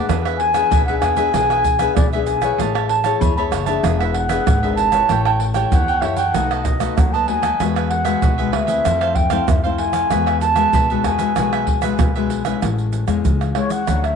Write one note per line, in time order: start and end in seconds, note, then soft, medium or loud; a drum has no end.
0.00 0.50 B3 medium
0.00 0.50 D4 medium
0.00 0.50 G#4 medium
0.00 0.34 F#5 medium
0.09 0.62 E2 loud
0.09 0.68 E3 medium
0.09 0.23 D4 medium
0.09 0.23 G#4 medium
0.09 0.24 B4 medium
0.09 0.24 E5 medium
0.09 pandeiro medium
0.09 tamborim medium
0.09 shaker medium
0.09 surdo medium
0.25 0.39 G#4 medium
0.25 0.39 B4 medium
0.25 0.39 E5 medium
0.25 pandeiro soft
0.25 tamborim medium
0.25 shaker soft
0.37 0.82 G#5 loud
0.37 muted cavaquinho stroke soft
0.37 pandeiro medium
0.54 0.81 B3 medium
0.54 0.82 D4 medium
0.54 0.82 G#4 medium
0.54 0.70 G#4 medium
0.54 0.70 B4 medium
0.54 0.69 E5 medium
0.54 pandeiro medium
0.54 tamborim medium
0.54 shaker medium
0.71 0.98 B1 loud
0.71 1.31 B2 medium
0.71 0.86 D4 soft
0.71 0.86 G#4 medium
0.71 0.87 B4 medium
0.71 0.87 E5 medium
0.71 pandeiro medium
0.71 shaker medium
0.71 surdo loud
0.85 1.14 B3 medium
0.85 1.14 D4 medium
0.85 1.02 G#4 medium
0.85 1.02 B4 medium
0.85 1.02 E5 medium
0.85 0.98 F#5 medium
0.85 pandeiro soft
0.85 shaker soft
0.90 1.15 G#4 medium
0.99 1.29 E2 medium
0.99 1.17 D4 soft
0.99 1.17 G#4 medium
0.99 1.96 G#5 loud
0.99 pandeiro medium
0.99 tamborim medium
0.99 shaker medium
1.03 1.17 B4 soft
1.03 1.16 E5 medium
1.17 1.28 B3 medium
1.17 1.28 D4 medium
1.17 1.29 G#4 medium
1.17 1.33 G#4 medium
1.17 1.32 B4 medium
1.17 1.32 E5 medium
1.17 pandeiro medium
1.17 shaker medium
1.34 1.87 B1 loud
1.34 1.94 E3 medium
1.34 1.76 B3 medium
1.34 1.49 D4 soft
1.34 1.77 D4 medium
1.34 1.49 G#4 soft
1.34 1.77 G#4 medium
1.34 1.49 B4 medium
1.34 1.49 E5 soft
1.34 pandeiro medium
1.34 tamborim medium
1.34 shaker medium
1.34 surdo medium
1.50 1.64 G#4 medium
1.50 1.64 B4 medium
1.50 1.64 E5 medium
1.50 pandeiro soft
1.50 tamborim medium
1.50 shaker soft
1.64 muted cavaquinho stroke soft
1.64 pandeiro medium
1.64 shaker medium
1.64 surdo medium
1.79 2.07 B3 medium
1.79 2.07 D4 medium
1.79 2.11 G#4 medium
1.79 2.07 G#4 medium
1.79 2.11 B4 medium
1.79 2.10 E5 medium
1.79 pandeiro medium
1.79 tamborim medium
1.79 shaker medium
1.95 2.50 B1 medium
1.95 2.57 B2 medium
1.95 2.10 D5 medium
1.95 pandeiro medium
1.95 tamborim medium
1.95 shaker medium
1.95 surdo loud
2.11 2.40 B3 medium
2.11 2.42 G#4 medium
2.11 2.41 B4 medium
2.11 2.24 E5 medium
2.11 2.40 E5 medium
2.11 pandeiro soft
2.11 shaker soft
2.15 2.40 D4 medium
2.15 2.40 G#4 medium
2.25 2.59 G#5 medium
2.25 pandeiro medium
2.25 shaker medium
2.42 3.01 E4 medium
2.42 2.57 G#4 medium
2.42 3.01 G#4 medium
2.42 2.57 B4 medium
2.42 3.01 C#5 medium
2.42 2.57 E5 medium
2.42 pandeiro medium
2.42 tamborim medium
2.42 shaker medium
2.58 3.12 A1 medium
2.58 3.19 A3 medium
2.58 2.73 G#4 medium
2.58 2.73 C#5 medium
2.58 2.74 E5 medium
2.58 2.73 A5 medium
2.58 pandeiro medium
2.58 tamborim medium
2.58 shaker medium
2.58 surdo medium
2.75 2.88 C#5 medium
2.75 2.89 E5 medium
2.75 2.88 A5 medium
2.75 pandeiro soft
2.75 tamborim medium
2.75 shaker soft
2.88 3.18 A5 medium
2.88 muted cavaquinho stroke soft
2.88 pandeiro medium
3.04 3.32 E4 medium
3.04 3.32 G#4 medium
3.04 3.20 C#5 medium
3.04 3.32 C#5 medium
3.04 3.20 E5 medium
3.04 3.20 A5 medium
3.04 pandeiro soft
3.04 tamborim medium
3.04 shaker medium
3.19 3.48 E2 loud
3.19 3.82 E3 medium
3.19 3.36 G#4 medium
3.19 3.37 C#5 soft
3.19 3.37 E5 medium
3.19 3.36 A5 medium
3.19 3.35 B5 medium
3.19 pandeiro medium
3.19 shaker medium
3.19 surdo medium
3.36 3.64 E4 medium
3.36 3.64 G#4 medium
3.36 3.51 C#5 soft
3.36 3.65 C#5 medium
3.36 3.52 E5 medium
3.36 3.52 A5 medium
3.36 3.43 B5 loud
3.36 pandeiro soft
3.36 shaker soft
3.51 3.79 F#1 medium
3.51 3.67 G#4 soft
3.51 3.67 C#5 soft
3.51 3.66 E5 soft
3.51 3.65 A5 medium
3.51 pandeiro medium
3.51 tamborim medium
3.51 shaker medium
3.65 4.26 B3 medium
3.65 4.26 D4 medium
3.65 4.26 G#4 medium
3.65 3.83 C#5 medium
3.65 3.96 E5 medium
3.65 3.83 E5 medium
3.65 3.82 A5 medium
3.65 pandeiro medium
3.65 shaker medium
3.83 4.37 E1 loud
3.83 4.44 E3 medium
3.83 3.99 D4 soft
3.83 3.99 G#4 medium
3.83 3.99 B4 medium
3.83 3.99 E5 medium
3.83 pandeiro medium
3.83 tamborim medium
3.83 shaker medium
3.83 surdo medium
3.98 4.14 G#4 medium
3.98 4.14 B4 medium
3.98 4.15 E5 medium
3.98 4.04 F#5 medium
3.98 pandeiro soft
3.98 tamborim medium
3.98 shaker soft
4.12 4.73 F#5 medium
4.12 muted cavaquinho stroke soft
4.12 pandeiro medium
4.29 4.57 B3 medium
4.29 4.57 D4 medium
4.29 4.61 G#4 medium
4.29 4.58 G#4 medium
4.29 4.61 B4 medium
4.29 4.60 E5 medium
4.29 pandeiro medium
4.29 tamborim medium
4.29 shaker medium
4.47 5.00 G#1 loud
4.47 5.07 B2 medium
4.47 pandeiro medium
4.47 tamborim medium
4.47 shaker medium
4.47 surdo loud
4.63 4.90 B3 medium
4.63 4.90 D4 medium
4.63 4.90 G#4 medium
4.63 4.92 G#4 medium
4.63 4.92 B4 medium
4.63 4.91 E5 medium
4.63 pandeiro soft
4.63 shaker soft
4.75 5.21 A5 loud
4.75 pandeiro medium
4.75 shaker medium
4.92 5.51 E4 medium
4.92 5.51 G4 medium
4.92 5.08 G#4 medium
4.92 5.08 B4 medium
4.92 5.51 C#5 medium
4.92 5.08 E5 medium
4.92 pandeiro medium
4.92 tamborim medium
4.92 shaker medium
5.09 5.63 A1 loud
5.09 5.70 A3 medium
5.09 5.24 E4 medium
5.09 5.25 A4 medium
5.09 5.25 C#5 medium
5.09 5.25 G5 medium
5.09 pandeiro medium
5.09 tamborim medium
5.09 shaker medium
5.09 surdo medium
5.25 5.39 A4 medium
5.25 5.40 C#5 medium
5.25 5.39 G5 medium
5.25 5.31 A5 medium
5.25 pandeiro soft
5.25 tamborim medium
5.25 shaker soft
5.39 5.46 G5 medium
5.39 muted cavaquinho stroke soft
5.39 pandeiro medium
5.54 5.98 E4 medium
5.54 5.98 G4 medium
5.54 5.71 A4 medium
5.54 5.71 C#5 medium
5.54 5.98 C#5 medium
5.54 5.70 G5 medium
5.54 pandeiro soft
5.54 tamborim medium
5.54 shaker medium
5.71 5.99 E2 loud
5.71 6.32 E3 medium
5.71 5.87 E4 medium
5.71 5.87 A4 soft
5.71 5.87 C#5 medium
5.71 6.03 F#5 loud
5.71 5.87 G5 medium
5.71 pandeiro medium
5.71 shaker medium
5.71 surdo medium
5.88 6.02 A4 medium
5.88 6.03 C#5 medium
5.88 6.03 G5 medium
5.88 pandeiro soft
5.88 shaker soft
6.01 6.30 F#2 medium
6.01 6.22 E4 medium
6.01 6.18 E4 medium
6.01 6.22 G4 medium
6.01 6.18 A4 medium
6.01 6.22 C#5 medium
6.01 6.18 C#5 medium
6.01 6.18 E5 medium
6.01 6.17 G5 medium
6.01 pandeiro medium
6.01 tamborim medium
6.16 6.34 A4 medium
6.16 6.34 C#5 medium
6.16 6.66 F#5 loud
6.16 6.33 G5 medium
6.16 pandeiro medium
6.16 shaker medium
6.34 6.88 B1 loud
6.34 6.95 B2 medium
6.34 6.77 A3 medium
6.34 6.50 D#4 medium
6.34 6.78 D#4 medium
6.34 6.78 F#4 medium
6.34 6.50 A4 medium
6.34 6.50 B4 soft
6.34 6.50 D#5 medium
6.34 pandeiro medium
6.34 tamborim medium
6.34 shaker medium
6.34 surdo medium
6.51 6.65 A4 medium
6.51 6.66 B4 medium
6.51 6.66 D#5 medium
6.51 pandeiro soft
6.51 tamborim medium
6.51 shaker soft
6.64 6.98 D#5 medium
6.64 muted cavaquinho stroke soft
6.64 pandeiro medium
6.64 shaker medium
6.64 surdo medium
6.80 7.23 A3 medium
6.80 7.23 D#4 medium
6.80 7.24 F#4 medium
6.80 7.12 A4 medium
6.80 7.12 B4 medium
6.80 7.12 D#5 medium
6.80 pandeiro medium
6.80 tamborim medium
6.80 shaker medium
6.97 7.51 D#2 medium
6.97 7.57 F#3 medium
6.97 7.14 F#5 loud
6.97 pandeiro medium
6.97 tamborim medium
6.97 shaker loud
6.97 surdo loud
7.13 7.43 A4 medium
7.13 7.42 B4 medium
7.13 7.41 D#5 medium
7.13 7.28 A5 medium
7.13 pandeiro soft
7.13 shaker soft
7.27 7.47 A3 medium
7.27 7.48 D#4 medium
7.27 7.48 F#4 medium
7.27 7.64 G#5 medium
7.27 pandeiro medium
7.42 7.59 A4 medium
7.42 7.59 B4 medium
7.42 7.58 D#5 medium
7.42 pandeiro medium
7.42 tamborim medium
7.42 shaker medium
7.60 8.14 E2 loud
7.60 8.20 E3 medium
7.60 8.03 G#3 medium
7.60 8.03 B3 medium
7.60 7.75 F#4 soft
7.60 8.03 F#4 medium
7.60 7.75 G#4 medium
7.60 7.75 B4 medium
7.60 7.74 E5 medium
7.60 pandeiro medium
7.60 tamborim medium
7.60 shaker medium
7.60 surdo medium
7.76 7.89 G#4 medium
7.76 7.89 B4 medium
7.76 7.90 E5 medium
7.76 pandeiro soft
7.76 tamborim medium
7.76 shaker soft
7.89 8.54 F#5 medium
7.89 muted cavaquinho stroke soft
7.89 pandeiro medium
8.05 8.33 G#3 medium
8.05 8.34 B3 medium
8.05 8.34 F#4 medium
8.05 8.21 G#4 medium
8.05 8.21 B4 medium
8.05 8.21 E5 medium
8.05 pandeiro medium
8.05 tamborim medium
8.05 shaker medium
8.22 8.50 B1 loud
8.22 8.83 B2 medium
8.22 8.37 F#4 medium
8.22 8.37 G#4 soft
8.22 8.38 B4 medium
8.22 8.37 E5 medium
8.22 pandeiro medium
8.22 shaker medium
8.22 surdo medium
8.38 8.66 G#3 medium
8.38 8.66 B3 medium
8.38 8.66 F#4 medium
8.38 8.51 G#4 medium
8.38 8.52 B4 medium
8.38 8.52 E5 medium
8.38 pandeiro soft
8.38 shaker soft
8.52 8.81 D2 medium
8.52 8.68 F#4 soft
8.52 8.67 G#4 medium
8.52 8.67 B4 medium
8.52 9.17 E5 loud
8.52 8.66 E5 medium
8.52 pandeiro medium
8.52 tamborim medium
8.67 9.27 A3 medium
8.67 9.27 C4 medium
8.67 9.28 E4 medium
8.67 8.84 G#4 medium
8.67 8.83 B4 medium
8.67 8.83 E5 medium
8.67 pandeiro medium
8.67 shaker medium
8.85 9.39 F2 loud
8.85 9.46 F3 medium
8.85 9.00 E4 soft
8.85 9.00 A4 medium
8.85 9.00 C5 soft
8.85 9.00 F5 medium
8.85 pandeiro medium
8.85 tamborim medium
8.85 shaker medium
8.85 surdo medium
9.01 9.15 A4 medium
9.01 9.15 C5 medium
9.01 9.15 F5 medium
9.01 pandeiro soft
9.01 tamborim medium
9.01 shaker soft
9.15 9.49 G5 medium
9.15 muted cavaquinho stroke soft
9.15 pandeiro medium
9.15 surdo medium
9.30 9.59 A3 medium
9.30 9.59 C4 medium
9.30 9.59 E4 medium
9.30 9.63 A4 medium
9.30 9.62 C5 medium
9.30 9.62 F5 medium
9.30 pandeiro medium
9.30 tamborim medium
9.30 shaker medium
9.48 10.02 F2 medium
9.48 10.08 C3 medium
9.48 9.63 E5 medium
9.48 pandeiro medium
9.48 tamborim medium
9.48 shaker medium
9.48 surdo loud
9.64 10.07 A3 medium
9.64 10.07 C4 medium
9.64 10.07 E4 medium
9.64 9.93 A4 soft
9.64 9.93 C5 medium
9.64 9.70 F5 medium
9.64 9.92 F5 medium
9.64 pandeiro soft
9.64 shaker soft
9.77 10.37 G#5 medium
9.77 pandeiro medium
9.93 10.09 A4 medium
9.93 10.09 C5 medium
9.93 10.09 F5 medium
9.93 pandeiro medium
9.93 tamborim medium
9.93 shaker medium
10.10 10.65 E2 loud
10.10 10.71 E3 medium
10.10 10.54 G#3 medium
10.10 10.54 B3 medium
10.10 10.25 F#4 medium
10.10 10.54 F#4 medium
10.10 10.26 G#4 medium
10.10 10.26 B4 medium
10.10 10.25 E5 medium
10.10 pandeiro medium
10.10 tamborim medium
10.10 shaker medium
10.10 surdo medium
10.26 10.40 G#4 medium
10.26 10.40 B4 medium
10.26 10.40 E5 medium
10.26 pandeiro soft
10.26 tamborim medium
10.26 shaker soft
10.41 11.06 A5 loud
10.41 muted cavaquinho stroke soft
10.41 pandeiro medium
10.41 shaker medium
10.55 10.84 G#3 medium
10.55 10.84 B3 medium
10.55 10.84 F#4 medium
10.55 10.72 G#4 medium
10.55 10.72 B4 medium
10.55 10.71 E5 medium
10.55 pandeiro medium
10.55 tamborim medium
10.55 shaker medium
10.73 11.01 B1 loud
10.73 11.34 B2 medium
10.73 10.88 F#4 soft
10.73 10.88 G#4 soft
10.73 10.89 B4 medium
10.73 10.89 E5 medium
10.73 pandeiro medium
10.73 shaker medium
10.73 surdo medium
10.90 11.17 G#3 medium
10.90 11.17 B3 medium
10.90 11.17 F#4 medium
10.90 11.03 G#4 medium
10.90 11.04 B4 medium
10.90 11.04 E5 medium
10.90 pandeiro soft
10.90 shaker soft
11.04 11.32 E2 medium
11.04 11.19 F#4 soft
11.04 11.19 G#4 medium
11.04 11.18 B4 medium
11.04 11.17 E5 medium
11.04 11.99 G#5 medium
11.04 pandeiro medium
11.04 tamborim medium
11.04 shaker medium
11.19 11.31 G#3 medium
11.19 11.31 B3 medium
11.19 11.32 F#4 medium
11.19 11.35 G#4 medium
11.19 11.35 B4 medium
11.19 11.34 E5 medium
11.19 pandeiro medium
11.19 shaker medium
11.36 11.90 B1 loud
11.36 11.97 E3 soft
11.36 11.79 G#3 medium
11.36 11.79 B3 medium
11.36 11.51 F#4 soft
11.36 11.79 F#4 medium
11.36 11.51 G#4 medium
11.36 11.51 B4 medium
11.36 11.52 E5 medium
11.36 pandeiro medium
11.36 tamborim medium
11.36 shaker medium
11.36 surdo medium
11.53 11.67 G#4 medium
11.53 11.67 B4 medium
11.53 11.67 E5 medium
11.53 pandeiro soft
11.53 tamborim medium
11.53 shaker soft
11.67 muted cavaquinho stroke soft
11.67 pandeiro medium
11.67 surdo medium
11.82 12.10 G#3 medium
11.82 12.10 B3 medium
11.82 12.10 F#4 medium
11.82 12.14 G#4 medium
11.82 12.13 B4 medium
11.82 12.13 E5 medium
11.82 pandeiro medium
11.82 tamborim medium
11.82 shaker medium
11.99 12.53 B1 loud
11.99 12.59 B2 medium
11.99 pandeiro medium
11.99 tamborim medium
11.99 shaker medium
11.99 surdo loud
12.15 12.42 G#3 medium
12.15 12.42 B3 medium
12.15 12.42 F#4 medium
12.15 12.45 G#4 medium
12.15 12.44 B4 medium
12.15 12.44 E5 medium
12.15 pandeiro soft
12.15 shaker soft
12.30 pandeiro medium
12.30 shaker medium
12.45 13.04 G#3 medium
12.45 13.04 C#4 medium
12.45 13.04 E4 medium
12.45 12.61 G#4 soft
12.45 12.60 B4 medium
12.45 12.60 E5 medium
12.45 pandeiro medium
12.45 tamborim medium
12.45 shaker medium
12.62 13.02 A1 loud
12.62 13.22 A2 medium
12.62 pandeiro medium
12.62 tamborim medium
12.62 shaker medium
12.62 surdo medium
12.78 pandeiro soft
12.78 shaker soft
12.93 pandeiro medium
12.93 shaker medium
13.07 13.22 E2 medium
13.07 13.50 G#3 medium
13.07 13.50 C#4 medium
13.07 13.51 E4 medium
13.07 pandeiro medium
13.07 tamborim medium
13.07 shaker medium
13.25 13.51 C#2 medium
13.25 13.84 E3 soft
13.25 pandeiro medium
13.25 shaker medium
13.25 surdo medium
13.41 pandeiro soft
13.41 tamborim medium
13.41 shaker soft
13.55 13.82 G#3 medium
13.55 13.82 C#4 soft
13.55 13.82 E4 medium
13.55 13.72 C#5 medium
13.55 pandeiro medium
13.55 tamborim medium
13.70 14.06 F#5 loud
13.70 pandeiro medium
13.70 shaker medium
13.87 14.16 D2 loud
13.87 14.16 D3 medium
13.87 14.16 F#3 soft
13.87 14.16 A3 medium
13.87 14.16 C#4 medium
13.87 pandeiro medium
13.87 tamborim medium
13.87 shaker medium
13.87 surdo medium
14.04 14.16 E5 medium
14.04 pandeiro soft
14.04 tamborim medium
14.04 shaker soft